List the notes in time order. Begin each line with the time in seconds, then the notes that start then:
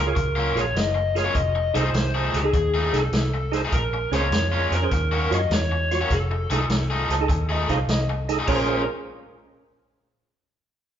Already playing: C#2
0.00 A#4
0.06 F4 G#4 C#5
0.15 C#2, muted overdriven electric guitar stroke, kick, closed hi-hat
0.36 F#3 A#3 C#4 F4
0.55 A#1 F4 G#4 A#4 C#5, snare, closed hi-hat
0.74 F#1 D#5, snare, closed hi-hat
0.95 muted overdriven electric guitar stroke
1.15 F4 G#4 A#4 C#5, snare, closed hi-hat
1.24 F#3 A#3 C#4 F4
1.35 F1 D#5, kick, closed hi-hat
1.55 muted overdriven electric guitar stroke
1.74 C2 F3 A3 D#4 G#4 A4 C5, snare, closed hi-hat
1.93 C2, muted overdriven electric guitar stroke, snare, closed hi-hat
2.15 F3 A3 D#4 G#4
2.34 C#2 G#4 A4, snare, closed hi-hat
2.43 D#4 G#4 A4
2.53 D#2, muted overdriven electric guitar stroke, kick, closed hi-hat
2.74 F3 A3 D#4 G#4
2.93 C2 D#4 G#4 A4, snare, closed hi-hat
3.12 C2, snare, closed hi-hat
3.34 muted overdriven electric guitar stroke
3.52 D#4 G#4 A4 C5, snare, closed hi-hat
3.65 F3 A3 D#4 G#4
3.72 A#1 A#4, kick, closed hi-hat
3.93 muted overdriven electric guitar stroke
4.11 C#2 A#2 G#3 C#4 F4 G#4 C5 C#5, snare, closed hi-hat
4.31 F2, muted overdriven electric guitar stroke, snare, closed hi-hat
4.52 A#2 G#3 C#4 F4
4.71 F2 G#4 A#4 C5, snare, closed hi-hat
4.82 C#4 G#4 C5
4.91 D#2, muted overdriven electric guitar stroke, kick, snare, closed hi-hat
5.12 D#3 A#3 C#4 F#4
5.31 F#2 F4 F#4 C#5 D#5, snare, closed hi-hat
5.50 E2 C#5, snare, closed hi-hat
5.72 muted overdriven electric guitar stroke
5.91 F4 F#4 C#5, snare, closed hi-hat
6.01 D#3 A#3 C#4 F#4
6.10 F1 A4, kick, snare, closed hi-hat
6.31 muted overdriven electric guitar stroke
6.50 C2 F3 A3 D#4 G#4 A4, snare, closed hi-hat
6.69 C2, muted overdriven electric guitar stroke, snare, closed hi-hat
6.90 F3 A3 D#4 G#4
7.09 C#2 G#4 C5 A5, snare, closed hi-hat
7.21 D#4 G#4 A4
7.28 D#2 G#5, muted overdriven electric guitar stroke, kick, closed hi-hat
7.49 F3 A3 D#4 G#4 D#5
7.69 C2 D#4 G#4 C5 F5, kick, snare, closed hi-hat
7.88 C2 D#5, snare, closed hi-hat
8.10 muted overdriven electric guitar stroke
8.29 D#4 G#4 A4, snare, closed hi-hat
8.39 F3 A3 D#4 G#4
8.48 A#1 A#2 G#3 C#4 F4 G#4 A#4 C5 C#5, kick, crash